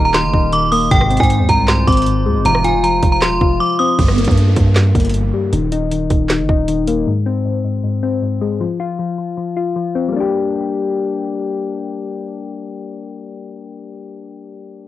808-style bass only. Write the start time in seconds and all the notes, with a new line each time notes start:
Already playing: D#1
0.24 G1
0.33 D#1
0.91 G#1
1.20 G#2
1.39 D#2
1.49 C2
1.87 G#1
2.26 D#2
2.35 G#1
2.45 F1
3.03 F1
3.22 D#1
3.32 F1
3.41 F1
3.99 G1
4.28 G2
4.57 G2
4.95 G1
5.53 D#1
6.10 D#1
6.39 G1
6.49 D#1